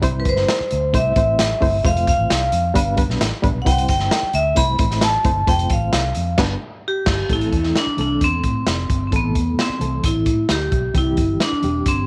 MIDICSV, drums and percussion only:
0, 0, Header, 1, 2, 480
1, 0, Start_track
1, 0, Key_signature, 0, "minor"
1, 0, Tempo, 455235
1, 26, Time_signature, 4, 2, 24, 8
1, 12723, End_track
2, 0, Start_track
2, 0, Title_t, "Drums"
2, 26, Note_on_c, 9, 42, 91
2, 27, Note_on_c, 9, 36, 118
2, 132, Note_off_c, 9, 36, 0
2, 132, Note_off_c, 9, 42, 0
2, 265, Note_on_c, 9, 42, 73
2, 268, Note_on_c, 9, 36, 84
2, 370, Note_off_c, 9, 42, 0
2, 374, Note_off_c, 9, 36, 0
2, 383, Note_on_c, 9, 38, 33
2, 489, Note_off_c, 9, 38, 0
2, 512, Note_on_c, 9, 38, 108
2, 512, Note_on_c, 9, 42, 81
2, 617, Note_off_c, 9, 38, 0
2, 617, Note_off_c, 9, 42, 0
2, 744, Note_on_c, 9, 42, 69
2, 850, Note_off_c, 9, 42, 0
2, 988, Note_on_c, 9, 36, 95
2, 990, Note_on_c, 9, 42, 93
2, 1094, Note_off_c, 9, 36, 0
2, 1096, Note_off_c, 9, 42, 0
2, 1221, Note_on_c, 9, 42, 80
2, 1224, Note_on_c, 9, 36, 97
2, 1327, Note_off_c, 9, 42, 0
2, 1330, Note_off_c, 9, 36, 0
2, 1465, Note_on_c, 9, 38, 112
2, 1466, Note_on_c, 9, 42, 113
2, 1570, Note_off_c, 9, 38, 0
2, 1572, Note_off_c, 9, 42, 0
2, 1708, Note_on_c, 9, 36, 101
2, 1709, Note_on_c, 9, 46, 57
2, 1813, Note_off_c, 9, 36, 0
2, 1815, Note_off_c, 9, 46, 0
2, 1947, Note_on_c, 9, 36, 122
2, 1952, Note_on_c, 9, 42, 89
2, 2052, Note_off_c, 9, 36, 0
2, 2057, Note_off_c, 9, 42, 0
2, 2073, Note_on_c, 9, 42, 51
2, 2179, Note_off_c, 9, 42, 0
2, 2187, Note_on_c, 9, 36, 94
2, 2188, Note_on_c, 9, 42, 83
2, 2292, Note_off_c, 9, 36, 0
2, 2293, Note_off_c, 9, 42, 0
2, 2429, Note_on_c, 9, 38, 102
2, 2430, Note_on_c, 9, 42, 92
2, 2535, Note_off_c, 9, 38, 0
2, 2535, Note_off_c, 9, 42, 0
2, 2658, Note_on_c, 9, 42, 68
2, 2764, Note_off_c, 9, 42, 0
2, 2904, Note_on_c, 9, 42, 100
2, 2905, Note_on_c, 9, 36, 94
2, 3009, Note_off_c, 9, 42, 0
2, 3010, Note_off_c, 9, 36, 0
2, 3134, Note_on_c, 9, 42, 78
2, 3140, Note_on_c, 9, 36, 99
2, 3240, Note_off_c, 9, 42, 0
2, 3245, Note_off_c, 9, 36, 0
2, 3269, Note_on_c, 9, 38, 39
2, 3375, Note_off_c, 9, 38, 0
2, 3384, Note_on_c, 9, 38, 124
2, 3385, Note_on_c, 9, 42, 108
2, 3489, Note_off_c, 9, 38, 0
2, 3490, Note_off_c, 9, 42, 0
2, 3622, Note_on_c, 9, 42, 76
2, 3623, Note_on_c, 9, 36, 112
2, 3727, Note_off_c, 9, 42, 0
2, 3729, Note_off_c, 9, 36, 0
2, 3862, Note_on_c, 9, 36, 112
2, 3865, Note_on_c, 9, 42, 91
2, 3967, Note_off_c, 9, 36, 0
2, 3970, Note_off_c, 9, 42, 0
2, 3987, Note_on_c, 9, 42, 58
2, 4093, Note_off_c, 9, 42, 0
2, 4096, Note_on_c, 9, 42, 83
2, 4102, Note_on_c, 9, 36, 78
2, 4201, Note_off_c, 9, 42, 0
2, 4207, Note_off_c, 9, 36, 0
2, 4213, Note_on_c, 9, 38, 35
2, 4318, Note_off_c, 9, 38, 0
2, 4337, Note_on_c, 9, 38, 116
2, 4337, Note_on_c, 9, 42, 82
2, 4442, Note_off_c, 9, 38, 0
2, 4443, Note_off_c, 9, 42, 0
2, 4569, Note_on_c, 9, 42, 66
2, 4675, Note_off_c, 9, 42, 0
2, 4810, Note_on_c, 9, 42, 99
2, 4817, Note_on_c, 9, 36, 97
2, 4915, Note_off_c, 9, 42, 0
2, 4923, Note_off_c, 9, 36, 0
2, 5046, Note_on_c, 9, 42, 84
2, 5052, Note_on_c, 9, 36, 100
2, 5151, Note_off_c, 9, 42, 0
2, 5157, Note_off_c, 9, 36, 0
2, 5177, Note_on_c, 9, 38, 37
2, 5183, Note_on_c, 9, 42, 56
2, 5283, Note_off_c, 9, 38, 0
2, 5286, Note_on_c, 9, 38, 117
2, 5288, Note_off_c, 9, 42, 0
2, 5288, Note_on_c, 9, 42, 105
2, 5392, Note_off_c, 9, 38, 0
2, 5393, Note_off_c, 9, 42, 0
2, 5529, Note_on_c, 9, 42, 78
2, 5533, Note_on_c, 9, 36, 106
2, 5635, Note_off_c, 9, 42, 0
2, 5638, Note_off_c, 9, 36, 0
2, 5772, Note_on_c, 9, 36, 113
2, 5774, Note_on_c, 9, 42, 86
2, 5878, Note_off_c, 9, 36, 0
2, 5879, Note_off_c, 9, 42, 0
2, 5894, Note_on_c, 9, 42, 53
2, 6000, Note_off_c, 9, 42, 0
2, 6005, Note_on_c, 9, 42, 78
2, 6013, Note_on_c, 9, 36, 94
2, 6111, Note_off_c, 9, 42, 0
2, 6118, Note_off_c, 9, 36, 0
2, 6250, Note_on_c, 9, 38, 105
2, 6250, Note_on_c, 9, 42, 97
2, 6355, Note_off_c, 9, 38, 0
2, 6355, Note_off_c, 9, 42, 0
2, 6481, Note_on_c, 9, 42, 70
2, 6586, Note_off_c, 9, 42, 0
2, 6725, Note_on_c, 9, 38, 116
2, 6725, Note_on_c, 9, 49, 92
2, 6729, Note_on_c, 9, 36, 116
2, 6830, Note_off_c, 9, 38, 0
2, 6830, Note_off_c, 9, 49, 0
2, 6835, Note_off_c, 9, 36, 0
2, 7446, Note_on_c, 9, 38, 120
2, 7446, Note_on_c, 9, 49, 89
2, 7450, Note_on_c, 9, 36, 116
2, 7552, Note_off_c, 9, 38, 0
2, 7552, Note_off_c, 9, 49, 0
2, 7555, Note_off_c, 9, 36, 0
2, 7691, Note_on_c, 9, 36, 95
2, 7692, Note_on_c, 9, 42, 73
2, 7797, Note_off_c, 9, 36, 0
2, 7798, Note_off_c, 9, 42, 0
2, 7815, Note_on_c, 9, 42, 44
2, 7921, Note_off_c, 9, 42, 0
2, 7933, Note_on_c, 9, 42, 62
2, 7935, Note_on_c, 9, 36, 73
2, 8039, Note_off_c, 9, 42, 0
2, 8041, Note_off_c, 9, 36, 0
2, 8052, Note_on_c, 9, 38, 30
2, 8158, Note_off_c, 9, 38, 0
2, 8178, Note_on_c, 9, 38, 95
2, 8178, Note_on_c, 9, 42, 78
2, 8283, Note_off_c, 9, 38, 0
2, 8283, Note_off_c, 9, 42, 0
2, 8414, Note_on_c, 9, 42, 60
2, 8519, Note_off_c, 9, 42, 0
2, 8657, Note_on_c, 9, 42, 77
2, 8659, Note_on_c, 9, 36, 83
2, 8763, Note_off_c, 9, 42, 0
2, 8764, Note_off_c, 9, 36, 0
2, 8894, Note_on_c, 9, 42, 67
2, 8896, Note_on_c, 9, 36, 74
2, 8999, Note_off_c, 9, 42, 0
2, 9001, Note_off_c, 9, 36, 0
2, 9137, Note_on_c, 9, 38, 106
2, 9139, Note_on_c, 9, 42, 91
2, 9243, Note_off_c, 9, 38, 0
2, 9244, Note_off_c, 9, 42, 0
2, 9381, Note_on_c, 9, 36, 97
2, 9382, Note_on_c, 9, 42, 69
2, 9487, Note_off_c, 9, 36, 0
2, 9488, Note_off_c, 9, 42, 0
2, 9618, Note_on_c, 9, 42, 70
2, 9619, Note_on_c, 9, 36, 99
2, 9723, Note_off_c, 9, 42, 0
2, 9724, Note_off_c, 9, 36, 0
2, 9861, Note_on_c, 9, 42, 62
2, 9863, Note_on_c, 9, 36, 66
2, 9967, Note_off_c, 9, 42, 0
2, 9968, Note_off_c, 9, 36, 0
2, 10110, Note_on_c, 9, 38, 96
2, 10111, Note_on_c, 9, 42, 73
2, 10216, Note_off_c, 9, 38, 0
2, 10216, Note_off_c, 9, 42, 0
2, 10343, Note_on_c, 9, 42, 57
2, 10449, Note_off_c, 9, 42, 0
2, 10582, Note_on_c, 9, 42, 90
2, 10584, Note_on_c, 9, 36, 87
2, 10687, Note_off_c, 9, 42, 0
2, 10689, Note_off_c, 9, 36, 0
2, 10816, Note_on_c, 9, 42, 72
2, 10819, Note_on_c, 9, 36, 75
2, 10922, Note_off_c, 9, 42, 0
2, 10925, Note_off_c, 9, 36, 0
2, 11059, Note_on_c, 9, 38, 101
2, 11060, Note_on_c, 9, 42, 93
2, 11164, Note_off_c, 9, 38, 0
2, 11166, Note_off_c, 9, 42, 0
2, 11302, Note_on_c, 9, 42, 65
2, 11303, Note_on_c, 9, 36, 87
2, 11408, Note_off_c, 9, 42, 0
2, 11409, Note_off_c, 9, 36, 0
2, 11541, Note_on_c, 9, 42, 75
2, 11542, Note_on_c, 9, 36, 95
2, 11647, Note_off_c, 9, 36, 0
2, 11647, Note_off_c, 9, 42, 0
2, 11777, Note_on_c, 9, 42, 69
2, 11784, Note_on_c, 9, 36, 72
2, 11882, Note_off_c, 9, 42, 0
2, 11889, Note_off_c, 9, 36, 0
2, 12024, Note_on_c, 9, 38, 92
2, 12024, Note_on_c, 9, 42, 72
2, 12129, Note_off_c, 9, 38, 0
2, 12129, Note_off_c, 9, 42, 0
2, 12258, Note_on_c, 9, 42, 58
2, 12363, Note_off_c, 9, 42, 0
2, 12503, Note_on_c, 9, 42, 90
2, 12505, Note_on_c, 9, 36, 86
2, 12608, Note_off_c, 9, 42, 0
2, 12610, Note_off_c, 9, 36, 0
2, 12723, End_track
0, 0, End_of_file